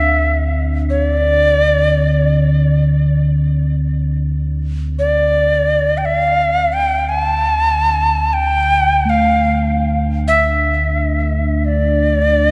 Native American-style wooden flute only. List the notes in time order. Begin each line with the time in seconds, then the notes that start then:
Already playing: E5
0.90 C#5
1.04 D5
4.99 D5
5.98 G5
6.05 F5
6.73 G5
7.09 A5
8.33 G5
9.10 F5
10.28 E5
11.65 D5